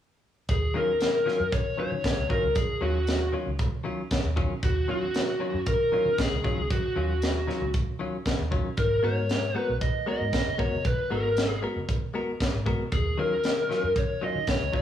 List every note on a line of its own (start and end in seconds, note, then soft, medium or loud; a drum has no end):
0.49 0.69 D#2 medium
0.49 0.77 G#4 medium
0.49 kick loud
0.49 closed hi-hat medium
0.74 0.90 D#3 medium
0.74 1.26 D#3 medium
0.74 0.91 F#3 medium
0.74 0.91 C#4 medium
0.74 0.91 F4 medium
0.74 1.53 A#4 medium
1.01 snare loud
1.01 closed hi-hat medium
1.26 1.42 D#3 medium
1.26 1.43 F#3 medium
1.26 1.43 C#4 medium
1.26 1.43 F4 medium
1.26 snare soft
1.40 1.60 F#2 medium
1.52 1.78 C#5 loud
1.52 kick loud
1.52 closed hi-hat medium
1.78 1.94 D#3 medium
1.78 1.94 F#3 medium
1.78 1.95 C#4 medium
1.78 1.95 F4 medium
1.78 2.27 C#5 medium
1.91 2.01 D#3 medium
2.04 kick medium
2.04 snare loud
2.04 closed hi-hat medium
2.17 2.27 C#2 medium
2.30 2.46 D#3 medium
2.30 2.46 F#3 medium
2.30 2.46 C#4 medium
2.30 2.47 F4 medium
2.30 2.55 A#4 medium
2.30 kick medium
2.43 2.53 C#2 medium
2.55 2.66 F#2 loud
2.55 2.82 G#4 medium
2.55 kick loud
2.55 closed hi-hat medium
2.81 3.32 D#2 medium
2.81 2.97 D#3 medium
2.81 2.98 F#3 medium
2.81 2.98 C#4 medium
2.81 2.98 F4 medium
2.81 3.30 F#4 medium
3.07 snare loud
3.07 closed hi-hat medium
3.32 3.49 D#3 medium
3.32 3.49 F#3 medium
3.32 3.50 C#4 medium
3.32 3.50 F4 medium
3.46 3.67 C#2 medium
3.59 kick loud
3.59 closed hi-hat medium
3.84 4.01 D#3 medium
3.84 4.01 F#3 medium
3.84 4.01 C#4 medium
3.84 4.02 F4 loud
4.11 kick medium
4.11 snare loud
4.11 closed hi-hat medium
4.24 4.45 D#2 medium
4.36 4.53 D#3 loud
4.36 4.53 F#3 medium
4.36 4.53 C#4 loud
4.36 4.53 F4 medium
4.36 kick medium
4.63 4.83 D#2 loud
4.63 4.88 F#4 medium
4.63 kick loud
4.63 closed hi-hat medium
4.88 5.05 D#3 medium
4.88 5.40 D#3 medium
4.88 5.05 F#3 medium
4.88 5.05 C#4 medium
4.88 5.05 F4 medium
4.88 5.64 F#4 medium
5.14 snare loud
5.14 closed hi-hat medium
5.40 5.56 D#3 medium
5.40 5.57 F#3 medium
5.40 5.57 C#4 medium
5.40 5.57 F4 medium
5.54 5.74 F#2 medium
5.66 6.20 A#4 loud
5.66 kick loud
5.66 closed hi-hat medium
5.92 6.08 D#3 medium
5.92 6.09 F#3 medium
5.92 6.09 C#4 medium
5.92 6.09 F4 medium
6.06 6.16 D#3 medium
6.18 6.67 G#4 medium
6.18 kick medium
6.18 snare loud
6.18 closed hi-hat medium
6.31 6.41 C#2 medium
6.44 6.60 D#3 medium
6.44 6.60 F#3 medium
6.44 6.61 C#4 medium
6.44 6.61 F4 medium
6.44 kick medium
6.58 6.68 C#2 medium
6.70 6.81 F#2 loud
6.70 7.71 F#4 medium
6.70 kick loud
6.70 closed hi-hat medium
6.96 7.47 D#2 medium
6.96 7.12 D#3 medium
6.96 7.12 F#3 medium
6.96 7.13 C#4 medium
6.96 7.13 F4 medium
7.22 snare loud
7.22 closed hi-hat medium
7.47 7.64 D#3 medium
7.47 7.64 F#3 medium
7.47 7.64 C#4 medium
7.47 7.65 F4 medium
7.47 snare soft
7.61 7.82 C#2 medium
7.74 kick loud
7.74 closed hi-hat medium
7.99 8.16 D#3 medium
7.99 8.16 F#3 medium
7.99 8.16 C#4 medium
7.99 8.16 F4 medium
8.26 kick medium
8.26 snare loud
8.26 closed hi-hat medium
8.39 8.59 D#2 medium
8.51 8.67 D#3 medium
8.51 8.68 F#3 medium
8.51 8.68 C#4 loud
8.51 8.68 F4 medium
8.51 kick medium
8.77 8.98 G#1 medium
8.77 9.02 A#4 medium
8.77 kick medium
8.77 closed hi-hat medium
9.03 9.55 G#2 medium
9.03 9.19 G#3 medium
9.03 9.20 B3 medium
9.03 9.20 F#4 medium
9.03 9.20 A#4 medium
9.03 9.58 C#5 medium
9.29 snare loud
9.29 closed hi-hat medium
9.55 9.71 G#3 medium
9.55 9.71 B3 medium
9.55 9.72 F#4 medium
9.55 9.72 A#4 medium
9.55 9.78 B4 medium
9.69 9.89 B1 medium
9.81 10.07 D#5 loud
9.81 kick loud
9.81 closed hi-hat medium
10.06 10.23 G#3 medium
10.06 10.23 B3 medium
10.06 10.23 F#4 medium
10.06 10.24 A#4 medium
10.06 10.60 D#5 loud
10.21 10.31 G#2 medium
10.33 kick medium
10.33 snare loud
10.33 closed hi-hat medium
10.47 10.57 F#1 medium
10.58 10.75 G#3 medium
10.58 10.75 B3 medium
10.58 10.75 F#4 medium
10.58 10.75 A#4 medium
10.58 10.86 C#5 medium
10.58 muted fingered electric bass stroke soft
10.58 kick medium
10.73 10.82 F#1 medium
10.85 10.96 B1 loud
10.85 11.10 B4 medium
10.85 kick loud
10.85 closed hi-hat medium
11.10 11.62 G#1 medium
11.10 11.27 G#3 medium
11.10 11.27 B3 medium
11.10 11.27 F#4 medium
11.10 11.60 A#4 medium
11.10 11.27 A#4 medium
11.37 snare loud
11.37 closed hi-hat medium
11.62 11.78 G#3 medium
11.62 11.79 B3 medium
11.62 11.79 F#4 medium
11.62 11.79 A#4 medium
11.76 11.96 F#1 medium
11.89 kick loud
11.89 closed hi-hat medium
12.14 12.30 G#3 medium
12.14 12.30 B3 medium
12.14 12.31 F#4 medium
12.14 12.31 A#4 medium
12.40 kick medium
12.40 snare loud
12.40 closed hi-hat medium
12.54 12.74 G#1 medium
12.66 12.82 G#3 medium
12.66 12.82 B3 medium
12.66 12.83 F#4 medium
12.66 12.83 A#4 loud
12.66 kick medium
12.92 13.12 D#2 loud
12.92 13.17 G#4 medium
12.92 kick loud
12.92 closed hi-hat medium
13.18 13.34 D#3 medium
13.18 13.69 D#3 medium
13.18 13.34 F#3 medium
13.18 13.34 C#4 medium
13.18 13.35 F4 medium
13.18 13.92 A#4 medium
13.44 snare loud
13.44 closed hi-hat medium
13.69 13.86 D#3 medium
13.69 13.86 F#3 medium
13.69 13.86 C#4 medium
13.69 13.86 F4 medium
13.69 snare soft
13.83 14.04 F#2 medium
13.96 14.24 C#5 loud
13.96 kick medium
13.96 closed hi-hat medium
14.21 14.37 D#3 medium
14.21 14.38 F#3 medium
14.21 14.38 C#4 medium
14.21 14.38 F4 medium
14.21 14.49 D#5 loud
14.35 14.45 D#3 medium
14.47 14.75 C#5 medium
14.47 kick medium
14.47 snare loud
14.47 closed hi-hat medium
14.61 14.71 C#2 medium
14.72 14.82 D#3 medium
14.72 14.82 F#3 medium
14.72 14.82 C#4 medium
14.72 14.82 F4 medium
14.72 14.82 D#5 medium
14.72 muted fingered electric bass stroke soft
14.72 kick medium